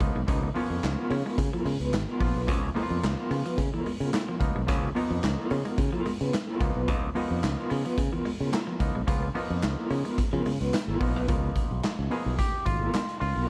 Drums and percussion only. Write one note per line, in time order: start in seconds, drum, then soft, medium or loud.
0.00 kick medium
0.00 closed hi-hat medium
0.28 kick loud
0.28 closed hi-hat loud
0.55 open hi-hat medium
0.83 snare loud
0.83 clap medium
0.83 closed hi-hat medium
1.10 open hi-hat medium
1.38 kick medium
1.38 closed hi-hat medium
1.66 open hi-hat medium
1.81 closed hi-hat medium
1.93 snare loud
1.93 clap loud
1.93 closed hi-hat loud
2.21 kick medium
2.21 open hi-hat medium
2.48 kick loud
2.48 closed hi-hat loud
2.76 open hi-hat medium
3.03 snare loud
3.03 clap medium
3.03 closed hi-hat medium
3.31 open hi-hat medium
3.46 closed hi-hat soft
3.58 kick medium
3.58 closed hi-hat medium
3.86 open hi-hat medium
4.01 closed hi-hat medium
4.13 snare loud
4.13 clap loud
4.13 closed hi-hat loud
4.41 kick medium
4.41 closed hi-hat medium
4.68 kick loud
4.68 closed hi-hat loud
4.96 open hi-hat medium
5.23 snare loud
5.23 clap medium
5.23 closed hi-hat medium
5.50 open hi-hat medium
5.65 closed hi-hat medium
5.78 kick medium
5.78 closed hi-hat medium
6.05 open hi-hat medium
6.21 closed hi-hat medium
6.33 snare loud
6.33 clap medium
6.33 closed hi-hat loud
6.60 kick loud
6.60 closed hi-hat medium
6.88 kick loud
6.88 closed hi-hat medium
7.16 open hi-hat medium
7.43 snare medium
7.43 clap medium
7.43 closed hi-hat medium
7.70 open hi-hat medium
7.85 closed hi-hat medium
7.98 kick loud
7.98 closed hi-hat medium
8.25 open hi-hat medium
8.53 snare loud
8.53 clap loud
8.53 closed hi-hat loud
8.80 kick medium
8.80 closed hi-hat medium
9.08 kick loud
9.08 closed hi-hat loud
9.35 open hi-hat medium
9.62 snare loud
9.62 clap medium
9.62 closed hi-hat medium
9.90 open hi-hat medium
10.05 closed hi-hat medium
10.18 kick medium
10.18 closed hi-hat loud
10.45 open hi-hat medium
10.61 closed hi-hat medium
10.73 snare loud
10.73 clap medium
10.73 closed hi-hat loud
11.01 kick medium
11.01 open hi-hat medium
11.28 kick loud
11.28 closed hi-hat medium
11.56 kick medium
11.56 closed hi-hat medium
11.83 snare loud
11.83 clap medium
11.83 closed hi-hat medium
12.11 open hi-hat medium
12.39 kick medium
12.39 closed hi-hat medium
12.66 kick medium
12.66 closed hi-hat medium
12.94 snare loud
12.94 clap loud
12.94 closed hi-hat loud
13.09 closed hi-hat medium
13.21 open hi-hat medium